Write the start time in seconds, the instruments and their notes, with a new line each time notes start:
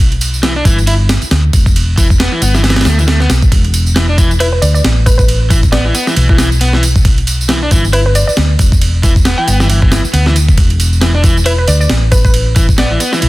Already playing: fingered electric bass B1
0.12 ride
0.21 ride, tambourine
0.34 tambourine
0.43 overdriven electric guitar E3, snare, ride
0.56 overdriven electric guitar D4
0.65 fingered electric bass G1, overdriven electric guitar E3, kick, ride, tambourine
0.78 tambourine
0.87 overdriven electric guitar E4, ride, tambourine
1.09 snare, ride, tambourine
1.22 muted fingered electric bass stroke, ride, tambourine
1.31 fingered electric bass D2, snare, ride
1.53 fingered electric bass E1, kick, ride, tambourine
1.66 kick, tambourine
1.76 ride, tambourine
1.97 overdriven electric guitar E3, kick, ride, tambourine
2.10 kick, tambourine
2.20 overdriven electric guitar B3, snare, ride
2.32 overdriven electric guitar E3
2.42 fingered electric bass G1, overdriven electric guitar B3, ride, tambourine
2.55 overdriven electric guitar E3, snare, tambourine
2.64 overdriven electric guitar E3, snare, ride, tambourine
2.70 snare, ride
2.76 overdriven electric guitar E3, snare, ride
2.81 snare, ride
2.85 fingered electric bass D2, overdriven electric guitar A3, snare, ride, tambourine
2.99 overdriven electric guitar E3, tambourine
3.07 overdriven electric guitar A3, snare, ride
3.20 overdriven electric guitar B3, snare
3.30 fingered electric bass B1, snare, ride, tambourine
3.42 kick, tambourine
3.52 fingered electric bass E1, kick, ride, tambourine
3.64 ride
3.74 ride, tambourine
3.86 tambourine
3.96 overdriven electric guitar E3, snare, ride
4.09 overdriven electric guitar D4
4.18 overdriven electric guitar E3, kick, ride, tambourine
4.31 tambourine
4.40 overdriven electric guitar E4, synth pluck B4, ride, tambourine
4.53 synth pluck B4
4.62 fingered electric bass D2, synth pluck D5, ride, tambourine
4.74 synth pluck D5, tambourine
4.84 fingered electric bass A1, snare, ride
5.06 synth pluck B4, kick, ride, tambourine
5.18 synth pluck B4, kick, tambourine
5.28 ride, tambourine
5.50 overdriven electric guitar E3, kick, ride, tambourine
5.63 kick, tambourine
5.72 overdriven electric guitar B3, synth pluck D5, snare, ride, tambourine
5.85 overdriven electric guitar E3
5.95 overdriven electric guitar B3, ride, tambourine
6.07 overdriven electric guitar E3, snare, tambourine
6.16 fingered electric bass B1, overdriven electric guitar E3, ride, tambourine
6.29 overdriven electric guitar E3, kick
6.38 overdriven electric guitar E3, snare, ride, tambourine
6.52 tambourine
6.61 overdriven electric guitar B3, ride, tambourine
6.73 overdriven electric guitar E3, snare
6.83 ride, tambourine
6.96 kick, tambourine
7.05 kick, ride, tambourine
7.18 ride
7.27 ride, tambourine
7.41 tambourine
7.49 overdriven electric guitar E3, snare, ride
7.63 overdriven electric guitar D4
7.71 fingered electric bass G1, overdriven electric guitar E3, kick, ride, tambourine
7.85 tambourine
7.93 overdriven electric guitar E4, synth pluck B4, ride, tambourine
8.06 synth pluck B4
8.15 synth pluck D5, ride, tambourine
8.27 synth pluck D5, muted fingered electric bass stroke, tambourine
8.37 fingered electric bass D2, snare, ride
8.59 fingered electric bass E1, kick, ride, tambourine
8.72 kick, tambourine
8.81 ride, tambourine
9.03 overdriven electric guitar E3, kick, ride, tambourine
9.16 kick, tambourine
9.25 overdriven electric guitar B3, snare, ride, tambourine
9.38 overdriven electric guitar E3, synth pluck G5
9.48 fingered electric bass G1, overdriven electric guitar B3, ride, tambourine
9.60 overdriven electric guitar E3, snare, tambourine
9.69 overdriven electric guitar E3, ride, tambourine
9.82 overdriven electric guitar E3, kick
9.92 overdriven electric guitar E3, snare, ride, tambourine
10.04 muted fingered electric bass stroke, tambourine
10.13 fingered electric bass D2, overdriven electric guitar B3, ride, tambourine
10.26 overdriven electric guitar E3, snare
10.36 ride, tambourine
10.49 kick, tambourine
10.58 fingered electric bass E1, kick, ride, tambourine
10.70 ride
10.80 ride, tambourine
10.93 tambourine
11.01 overdriven electric guitar E3, snare, ride, tambourine
11.15 overdriven electric guitar D4
11.24 overdriven electric guitar E3, kick, ride, tambourine
11.37 tambourine
11.45 overdriven electric guitar E4, synth pluck B4, ride
11.58 synth pluck B4
11.68 fingered electric bass D2, synth pluck D5, ride, tambourine
11.80 synth pluck D5, tambourine
11.89 fingered electric bass A1, snare, ride, tambourine
12.12 synth pluck B4, kick, ride, tambourine
12.25 synth pluck B4, kick, tambourine
12.34 ride, tambourine
12.56 overdriven electric guitar E3, kick, ride, tambourine
12.69 kick, tambourine
12.78 overdriven electric guitar B3, synth pluck D5, snare, ride
12.91 overdriven electric guitar E3
13.00 overdriven electric guitar B3, ride, tambourine
13.12 overdriven electric guitar E3, snare, tambourine
13.22 fingered electric bass B1, overdriven electric guitar E3, ride, tambourine